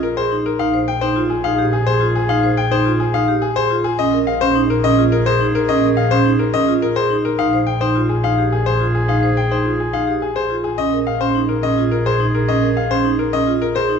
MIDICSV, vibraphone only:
0, 0, Header, 1, 2, 480
1, 0, Start_track
1, 0, Tempo, 566038
1, 504, Time_signature, 3, 2, 24, 8
1, 11866, End_track
2, 0, Start_track
2, 0, Title_t, "Vibraphone"
2, 0, Program_c, 0, 11
2, 146, Note_on_c, 0, 68, 110
2, 265, Note_on_c, 0, 63, 83
2, 300, Note_off_c, 0, 68, 0
2, 420, Note_off_c, 0, 63, 0
2, 506, Note_on_c, 0, 63, 113
2, 625, Note_on_c, 0, 72, 83
2, 660, Note_off_c, 0, 63, 0
2, 780, Note_off_c, 0, 72, 0
2, 864, Note_on_c, 0, 63, 112
2, 984, Note_on_c, 0, 65, 90
2, 1020, Note_off_c, 0, 63, 0
2, 1140, Note_off_c, 0, 65, 0
2, 1224, Note_on_c, 0, 63, 102
2, 1344, Note_on_c, 0, 67, 94
2, 1380, Note_off_c, 0, 63, 0
2, 1500, Note_off_c, 0, 67, 0
2, 1582, Note_on_c, 0, 68, 106
2, 1702, Note_on_c, 0, 65, 91
2, 1739, Note_off_c, 0, 68, 0
2, 1859, Note_off_c, 0, 65, 0
2, 1942, Note_on_c, 0, 63, 118
2, 2063, Note_on_c, 0, 72, 93
2, 2099, Note_off_c, 0, 63, 0
2, 2219, Note_off_c, 0, 72, 0
2, 2301, Note_on_c, 0, 63, 117
2, 2421, Note_on_c, 0, 65, 92
2, 2459, Note_off_c, 0, 63, 0
2, 2579, Note_off_c, 0, 65, 0
2, 2663, Note_on_c, 0, 63, 118
2, 2782, Note_on_c, 0, 67, 97
2, 2819, Note_off_c, 0, 63, 0
2, 2939, Note_off_c, 0, 67, 0
2, 3022, Note_on_c, 0, 68, 124
2, 3142, Note_on_c, 0, 65, 98
2, 3179, Note_off_c, 0, 68, 0
2, 3299, Note_off_c, 0, 65, 0
2, 3382, Note_on_c, 0, 61, 112
2, 3503, Note_on_c, 0, 70, 90
2, 3539, Note_off_c, 0, 61, 0
2, 3659, Note_off_c, 0, 70, 0
2, 3743, Note_on_c, 0, 61, 122
2, 3862, Note_on_c, 0, 63, 93
2, 3899, Note_off_c, 0, 61, 0
2, 4019, Note_off_c, 0, 63, 0
2, 4105, Note_on_c, 0, 61, 121
2, 4227, Note_on_c, 0, 65, 94
2, 4260, Note_off_c, 0, 61, 0
2, 4381, Note_off_c, 0, 65, 0
2, 4464, Note_on_c, 0, 68, 121
2, 4587, Note_on_c, 0, 63, 94
2, 4620, Note_off_c, 0, 68, 0
2, 4741, Note_off_c, 0, 63, 0
2, 4825, Note_on_c, 0, 61, 118
2, 4946, Note_on_c, 0, 70, 93
2, 4980, Note_off_c, 0, 61, 0
2, 5100, Note_off_c, 0, 70, 0
2, 5186, Note_on_c, 0, 61, 118
2, 5305, Note_on_c, 0, 63, 86
2, 5340, Note_off_c, 0, 61, 0
2, 5460, Note_off_c, 0, 63, 0
2, 5547, Note_on_c, 0, 61, 114
2, 5666, Note_on_c, 0, 65, 91
2, 5701, Note_off_c, 0, 61, 0
2, 5820, Note_off_c, 0, 65, 0
2, 5905, Note_on_c, 0, 68, 113
2, 6024, Note_on_c, 0, 63, 87
2, 6060, Note_off_c, 0, 68, 0
2, 6180, Note_off_c, 0, 63, 0
2, 6267, Note_on_c, 0, 63, 110
2, 6387, Note_on_c, 0, 72, 89
2, 6421, Note_off_c, 0, 63, 0
2, 6541, Note_off_c, 0, 72, 0
2, 6625, Note_on_c, 0, 63, 109
2, 6745, Note_on_c, 0, 65, 83
2, 6780, Note_off_c, 0, 63, 0
2, 6900, Note_off_c, 0, 65, 0
2, 6984, Note_on_c, 0, 63, 99
2, 7107, Note_on_c, 0, 67, 81
2, 7140, Note_off_c, 0, 63, 0
2, 7261, Note_off_c, 0, 67, 0
2, 7347, Note_on_c, 0, 68, 102
2, 7466, Note_on_c, 0, 65, 78
2, 7501, Note_off_c, 0, 68, 0
2, 7620, Note_off_c, 0, 65, 0
2, 7704, Note_on_c, 0, 63, 100
2, 7825, Note_on_c, 0, 72, 80
2, 7860, Note_off_c, 0, 63, 0
2, 7980, Note_off_c, 0, 72, 0
2, 8064, Note_on_c, 0, 63, 97
2, 8185, Note_on_c, 0, 65, 75
2, 8220, Note_off_c, 0, 63, 0
2, 8340, Note_off_c, 0, 65, 0
2, 8424, Note_on_c, 0, 63, 96
2, 8542, Note_on_c, 0, 67, 77
2, 8580, Note_off_c, 0, 63, 0
2, 8699, Note_off_c, 0, 67, 0
2, 8785, Note_on_c, 0, 68, 99
2, 8905, Note_on_c, 0, 65, 76
2, 8940, Note_off_c, 0, 68, 0
2, 9060, Note_off_c, 0, 65, 0
2, 9145, Note_on_c, 0, 61, 102
2, 9266, Note_on_c, 0, 70, 78
2, 9300, Note_off_c, 0, 61, 0
2, 9420, Note_off_c, 0, 70, 0
2, 9505, Note_on_c, 0, 61, 100
2, 9625, Note_on_c, 0, 63, 83
2, 9660, Note_off_c, 0, 61, 0
2, 9780, Note_off_c, 0, 63, 0
2, 9867, Note_on_c, 0, 61, 100
2, 9986, Note_on_c, 0, 65, 79
2, 10021, Note_off_c, 0, 61, 0
2, 10141, Note_off_c, 0, 65, 0
2, 10226, Note_on_c, 0, 68, 104
2, 10347, Note_on_c, 0, 63, 83
2, 10380, Note_off_c, 0, 68, 0
2, 10501, Note_off_c, 0, 63, 0
2, 10585, Note_on_c, 0, 61, 103
2, 10704, Note_on_c, 0, 70, 81
2, 10740, Note_off_c, 0, 61, 0
2, 10860, Note_off_c, 0, 70, 0
2, 10947, Note_on_c, 0, 61, 105
2, 11065, Note_on_c, 0, 63, 84
2, 11101, Note_off_c, 0, 61, 0
2, 11220, Note_off_c, 0, 63, 0
2, 11304, Note_on_c, 0, 61, 101
2, 11421, Note_on_c, 0, 65, 84
2, 11460, Note_off_c, 0, 61, 0
2, 11579, Note_off_c, 0, 65, 0
2, 11660, Note_on_c, 0, 68, 109
2, 11780, Note_on_c, 0, 63, 88
2, 11818, Note_off_c, 0, 68, 0
2, 11866, Note_off_c, 0, 63, 0
2, 11866, End_track
0, 0, End_of_file